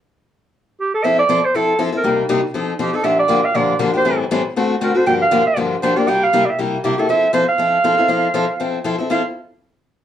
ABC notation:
X:1
M:4/4
L:1/16
Q:"Swing" 1/4=238
K:F
V:1 name="Clarinet"
z12 G2 A2 | e2 d4 c2 A4 z2 B2- | B2 z8 z2 G2 A2 | e2 d4 f2 d4 z2 c2- |
c2 z8 z2 B2 c2 | g2 f4 e2 z4 c2 d2 | g2 f3- f/2 d/2 e2 z4 G2 A2 | e4 c2 f8- f2- |
f12 z4 | f2 z12 z2 |]
V:2 name="Steel-string acoustic guitar"
z16 | [F,CEA]2 z2 [F,CEA]2 z2 [F,CEA]2 z2 [F,CEA]2 [CEA]2 | [C,G,B,_EG]2 z2 [C,G,B,EG]2 z2 [F,CEA]2 z2 [F,CEA]2 [CEA]2 | [B,,D,F,B,DG]2 z2 [B,,D,F,B,DG]2 z2 [B,,D,F,B,DG]2 z2 [B,,D,F,B,DG]2 [F,B,DG]2 |
[A,,E,G,CEA]2 z2 [A,,E,G,CEA]2 z2 [D,A,C^FA]2 z2 [D,A,CFA]2 [CFA]2 | [G,,D,F,B,DG]2 z2 [G,,D,F,B,DG]2 z2 [G,,D,F,B,DG]2 z2 [G,,D,F,B,DG]2 [F,B,DG]2 | [C,G,B,EG]2 z2 [C,G,B,EG]2 z2 [C,G,B,EG]2 z2 [C,G,B,EG]2 [B,EG]2 | [F,CEA]2 z2 [F,CEA]2 z2 [F,CEA]2 z2 [F,CEA]2 [CEA]2 |
[F,CEA]2 z2 [F,CEA]2 z2 [F,CEA]2 z2 [F,CEA]2 [CEA]2 | [F,CEA]2 z12 z2 |]